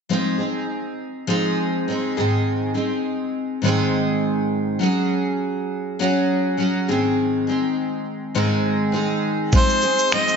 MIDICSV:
0, 0, Header, 1, 4, 480
1, 0, Start_track
1, 0, Key_signature, -4, "minor"
1, 0, Tempo, 589391
1, 79, Time_signature, 4, 2, 24, 8
1, 8440, End_track
2, 0, Start_track
2, 0, Title_t, "Harmonica"
2, 0, Program_c, 0, 22
2, 7785, Note_on_c, 0, 72, 78
2, 8258, Note_on_c, 0, 75, 90
2, 8270, Note_off_c, 0, 72, 0
2, 8440, Note_off_c, 0, 75, 0
2, 8440, End_track
3, 0, Start_track
3, 0, Title_t, "Steel-string acoustic guitar"
3, 0, Program_c, 1, 25
3, 76, Note_on_c, 1, 53, 54
3, 82, Note_on_c, 1, 56, 62
3, 86, Note_on_c, 1, 60, 68
3, 86, Note_on_c, 1, 63, 68
3, 92, Note_on_c, 1, 68, 69
3, 298, Note_off_c, 1, 68, 0
3, 305, Note_off_c, 1, 63, 0
3, 308, Note_on_c, 1, 68, 37
3, 314, Note_off_c, 1, 60, 0
3, 315, Note_on_c, 1, 63, 34
3, 318, Note_off_c, 1, 53, 0
3, 321, Note_off_c, 1, 56, 0
3, 324, Note_on_c, 1, 60, 31
3, 1036, Note_on_c, 1, 53, 64
3, 1037, Note_on_c, 1, 56, 64
3, 1039, Note_off_c, 1, 63, 0
3, 1040, Note_off_c, 1, 60, 0
3, 1041, Note_off_c, 1, 68, 0
3, 1042, Note_on_c, 1, 63, 69
3, 1043, Note_on_c, 1, 60, 60
3, 1044, Note_on_c, 1, 68, 69
3, 1518, Note_off_c, 1, 53, 0
3, 1526, Note_off_c, 1, 56, 0
3, 1530, Note_on_c, 1, 56, 47
3, 1531, Note_off_c, 1, 60, 0
3, 1534, Note_on_c, 1, 60, 46
3, 1540, Note_off_c, 1, 63, 0
3, 1541, Note_off_c, 1, 68, 0
3, 1543, Note_on_c, 1, 63, 45
3, 1544, Note_on_c, 1, 68, 53
3, 1756, Note_off_c, 1, 63, 0
3, 1758, Note_off_c, 1, 68, 0
3, 1762, Note_off_c, 1, 60, 0
3, 1765, Note_off_c, 1, 56, 0
3, 1766, Note_on_c, 1, 63, 47
3, 1767, Note_on_c, 1, 68, 55
3, 1772, Note_on_c, 1, 60, 48
3, 1775, Note_on_c, 1, 51, 49
3, 1775, Note_on_c, 1, 56, 44
3, 1776, Note_on_c, 1, 44, 45
3, 2228, Note_off_c, 1, 60, 0
3, 2229, Note_off_c, 1, 63, 0
3, 2230, Note_off_c, 1, 68, 0
3, 2233, Note_on_c, 1, 68, 36
3, 2237, Note_on_c, 1, 60, 33
3, 2239, Note_on_c, 1, 63, 37
3, 2242, Note_off_c, 1, 56, 0
3, 2245, Note_on_c, 1, 56, 30
3, 2248, Note_off_c, 1, 51, 0
3, 2249, Note_off_c, 1, 44, 0
3, 2946, Note_on_c, 1, 44, 64
3, 2956, Note_on_c, 1, 51, 69
3, 2958, Note_off_c, 1, 56, 0
3, 2960, Note_off_c, 1, 60, 0
3, 2960, Note_off_c, 1, 63, 0
3, 2962, Note_on_c, 1, 56, 72
3, 2971, Note_on_c, 1, 60, 69
3, 2973, Note_on_c, 1, 63, 69
3, 2977, Note_off_c, 1, 68, 0
3, 2981, Note_on_c, 1, 68, 79
3, 3898, Note_off_c, 1, 56, 0
3, 3902, Note_on_c, 1, 54, 58
3, 3911, Note_off_c, 1, 60, 0
3, 3913, Note_off_c, 1, 63, 0
3, 3914, Note_off_c, 1, 44, 0
3, 3914, Note_on_c, 1, 61, 63
3, 3917, Note_on_c, 1, 66, 70
3, 3919, Note_off_c, 1, 51, 0
3, 3926, Note_off_c, 1, 68, 0
3, 3934, Note_on_c, 1, 68, 77
3, 4872, Note_off_c, 1, 54, 0
3, 4874, Note_off_c, 1, 61, 0
3, 4879, Note_off_c, 1, 66, 0
3, 4880, Note_on_c, 1, 54, 65
3, 4884, Note_on_c, 1, 61, 73
3, 4888, Note_off_c, 1, 68, 0
3, 4891, Note_on_c, 1, 68, 74
3, 4894, Note_on_c, 1, 66, 73
3, 5344, Note_off_c, 1, 54, 0
3, 5351, Note_off_c, 1, 61, 0
3, 5354, Note_on_c, 1, 54, 43
3, 5359, Note_off_c, 1, 66, 0
3, 5360, Note_on_c, 1, 61, 55
3, 5369, Note_on_c, 1, 66, 54
3, 5370, Note_off_c, 1, 68, 0
3, 5374, Note_on_c, 1, 68, 54
3, 5595, Note_off_c, 1, 68, 0
3, 5597, Note_off_c, 1, 54, 0
3, 5601, Note_off_c, 1, 61, 0
3, 5605, Note_off_c, 1, 66, 0
3, 5605, Note_on_c, 1, 68, 51
3, 5608, Note_on_c, 1, 51, 47
3, 5609, Note_on_c, 1, 56, 46
3, 5611, Note_on_c, 1, 60, 55
3, 5611, Note_on_c, 1, 63, 50
3, 5615, Note_on_c, 1, 44, 49
3, 6081, Note_off_c, 1, 68, 0
3, 6084, Note_on_c, 1, 68, 42
3, 6088, Note_off_c, 1, 44, 0
3, 6089, Note_off_c, 1, 63, 0
3, 6092, Note_on_c, 1, 63, 37
3, 6095, Note_off_c, 1, 56, 0
3, 6099, Note_off_c, 1, 60, 0
3, 6099, Note_on_c, 1, 56, 33
3, 6102, Note_on_c, 1, 60, 37
3, 6797, Note_on_c, 1, 44, 64
3, 6798, Note_off_c, 1, 51, 0
3, 6798, Note_off_c, 1, 56, 0
3, 6799, Note_off_c, 1, 60, 0
3, 6801, Note_on_c, 1, 51, 72
3, 6802, Note_on_c, 1, 56, 74
3, 6802, Note_on_c, 1, 60, 81
3, 6805, Note_off_c, 1, 63, 0
3, 6809, Note_off_c, 1, 68, 0
3, 6809, Note_on_c, 1, 63, 71
3, 6812, Note_on_c, 1, 68, 75
3, 7261, Note_off_c, 1, 56, 0
3, 7264, Note_on_c, 1, 56, 53
3, 7272, Note_off_c, 1, 60, 0
3, 7275, Note_off_c, 1, 63, 0
3, 7275, Note_on_c, 1, 60, 50
3, 7278, Note_off_c, 1, 44, 0
3, 7278, Note_on_c, 1, 63, 54
3, 7283, Note_off_c, 1, 68, 0
3, 7286, Note_on_c, 1, 68, 53
3, 7754, Note_off_c, 1, 51, 0
3, 7754, Note_off_c, 1, 56, 0
3, 7757, Note_on_c, 1, 53, 63
3, 7758, Note_off_c, 1, 60, 0
3, 7758, Note_on_c, 1, 56, 62
3, 7761, Note_on_c, 1, 60, 64
3, 7762, Note_off_c, 1, 63, 0
3, 7766, Note_on_c, 1, 63, 64
3, 7770, Note_off_c, 1, 68, 0
3, 7774, Note_on_c, 1, 68, 67
3, 7991, Note_off_c, 1, 68, 0
3, 7998, Note_off_c, 1, 53, 0
3, 7998, Note_off_c, 1, 56, 0
3, 7999, Note_off_c, 1, 63, 0
3, 8000, Note_off_c, 1, 60, 0
3, 8001, Note_on_c, 1, 68, 43
3, 8009, Note_on_c, 1, 63, 33
3, 8014, Note_on_c, 1, 60, 32
3, 8236, Note_off_c, 1, 63, 0
3, 8240, Note_off_c, 1, 68, 0
3, 8240, Note_on_c, 1, 53, 65
3, 8241, Note_off_c, 1, 60, 0
3, 8246, Note_on_c, 1, 63, 64
3, 8248, Note_on_c, 1, 56, 65
3, 8249, Note_on_c, 1, 68, 72
3, 8250, Note_on_c, 1, 60, 74
3, 8440, Note_off_c, 1, 53, 0
3, 8440, Note_off_c, 1, 56, 0
3, 8440, Note_off_c, 1, 60, 0
3, 8440, Note_off_c, 1, 63, 0
3, 8440, Note_off_c, 1, 68, 0
3, 8440, End_track
4, 0, Start_track
4, 0, Title_t, "Drums"
4, 7757, Note_on_c, 9, 82, 61
4, 7760, Note_on_c, 9, 36, 88
4, 7839, Note_off_c, 9, 82, 0
4, 7841, Note_off_c, 9, 36, 0
4, 7897, Note_on_c, 9, 82, 43
4, 7978, Note_off_c, 9, 82, 0
4, 7995, Note_on_c, 9, 82, 40
4, 8076, Note_off_c, 9, 82, 0
4, 8133, Note_on_c, 9, 82, 41
4, 8214, Note_off_c, 9, 82, 0
4, 8241, Note_on_c, 9, 82, 75
4, 8244, Note_on_c, 9, 26, 98
4, 8323, Note_off_c, 9, 82, 0
4, 8326, Note_off_c, 9, 26, 0
4, 8372, Note_on_c, 9, 82, 52
4, 8440, Note_off_c, 9, 82, 0
4, 8440, End_track
0, 0, End_of_file